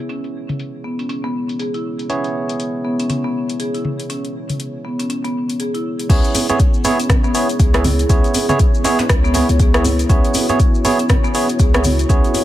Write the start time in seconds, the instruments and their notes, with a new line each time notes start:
Already playing: tine electric piano B3 E4 G#4 C#5, analog synth pad B3 C#4 E4 G#4 C#5
0.09 marimba C#4, closed hi-hat
0.24 closed hi-hat
0.49 closed hi-hat, mid tom
0.59 closed hi-hat
0.84 marimba B3
0.99 marimba C#4, closed hi-hat
1.09 marimba C#4, closed hi-hat
1.24 marimba B3
1.49 closed hi-hat
1.59 marimba G#4, closed hi-hat
1.74 marimba E4, closed hi-hat
1.99 closed hi-hat
2.10 tine electric piano B3 E4 G#4 C#5, marimba C#4, closed hi-hat
2.24 closed hi-hat
2.49 closed hi-hat
2.60 closed hi-hat
2.85 marimba B3
2.99 marimba C#4, closed hi-hat
3.10 marimba C#4, closed hi-hat, mid tom
3.24 marimba B3
3.49 closed hi-hat
3.60 marimba G#4, closed hi-hat
3.74 marimba E4, closed hi-hat
3.85 mid tom
4.00 closed hi-hat
4.10 marimba C#4, closed hi-hat
4.25 closed hi-hat
4.50 closed hi-hat, mid tom
4.60 closed hi-hat
4.85 marimba B3
4.99 marimba C#4, closed hi-hat
5.10 marimba C#4, closed hi-hat
5.25 marimba B3, closed hi-hat
5.49 closed hi-hat
5.60 marimba G#4, closed hi-hat
5.74 marimba E4, closed hi-hat
5.99 closed hi-hat
6.10 808-style bass C#2, analog synth pad B3 E4 G#4 C#5, tine electric piano B3 E4 G#4 C#5, marimba C#4, kick, closed hi-hat, crash, maracas
6.24 closed hi-hat, maracas
6.35 open hi-hat, djembe tone, maracas
6.49 tine electric piano B3 E4 G#4 C#5, closed hi-hat, djembe tone, maracas
6.59 kick, closed hi-hat, maracas
6.74 maracas
6.84 marimba B3, tine electric piano B3 E4 G#4 C#5, open hi-hat, djembe tone, maracas
6.99 marimba C#4, closed hi-hat, maracas
7.09 marimba C#4, kick, cross-stick, closed hi-hat, mid tom, djembe bass, maracas
7.24 marimba B3, maracas
7.34 tine electric piano B3 E4 G#4 C#5, open hi-hat, maracas
7.49 closed hi-hat, maracas
7.60 808-style bass C#2, marimba G#4, kick, closed hi-hat, maracas
7.74 tine electric piano B3 E4 G#4 C#5, marimba E4, cross-stick, closed hi-hat, djembe slap, djembe tone, maracas
7.84 open hi-hat, mid tom, djembe bass, maracas
7.99 closed hi-hat, maracas
8.09 808-style bass C#2, tine electric piano B3 E4 G#4 C#5, marimba C#4, kick, closed hi-hat, maracas
8.24 closed hi-hat, maracas
8.34 open hi-hat, djembe tone, maracas
8.49 tine electric piano B3 E4 G#4 C#5, closed hi-hat, mid tom, djembe tone, maracas
8.59 kick, closed hi-hat, maracas
8.74 maracas
8.84 marimba B3, tine electric piano B3 E4 G#4 C#5, open hi-hat, djembe slap, djembe tone, maracas
8.99 marimba C#4, closed hi-hat, djembe slap, maracas
9.09 808-style bass C#2, marimba C#4, kick, cross-stick, closed hi-hat, maracas
9.24 marimba B3, maracas
9.34 tine electric piano B3 E4 G#4 C#5, open hi-hat, djembe slap, djembe bass, maracas
9.49 808-style bass C#2, closed hi-hat, maracas
9.59 marimba G#4, kick, closed hi-hat, maracas
9.74 tine electric piano B3 E4 G#4 C#5, marimba E4, cross-stick, closed hi-hat, maracas
9.84 open hi-hat, djembe bass, maracas
9.99 closed hi-hat, maracas
10.09 808-style bass C#2, tine electric piano B3 E4 G#4 C#5, marimba C#4, analog synth pad F#4, kick, closed hi-hat, maracas
10.24 closed hi-hat, maracas
10.34 open hi-hat, djembe tone, maracas
10.49 tine electric piano B3 E4 G#4 C#5, closed hi-hat, djembe tone, maracas
10.59 kick, closed hi-hat, maracas
10.75 maracas
10.85 marimba B3, tine electric piano B3 E4 G#4 C#5, open hi-hat, djembe tone, maracas
10.99 marimba C#4, closed hi-hat, maracas
11.09 marimba C#4, kick, cross-stick, closed hi-hat, mid tom, djembe bass, maracas
11.24 marimba B3, maracas
11.34 tine electric piano B3 E4 G#4 C#5, open hi-hat, maracas
11.49 closed hi-hat, maracas
11.59 808-style bass C#2, marimba G#4, kick, closed hi-hat, maracas
11.74 tine electric piano B3 E4 G#4 C#5, marimba E4, cross-stick, closed hi-hat, djembe slap, djembe tone, maracas
11.84 open hi-hat, mid tom, djembe bass, maracas
11.99 closed hi-hat, maracas
12.09 808-style bass C#2, tine electric piano B3 E4 G#4 C#5, marimba C#4, kick, closed hi-hat, maracas
12.24 closed hi-hat, maracas
12.34 open hi-hat, djembe tone, maracas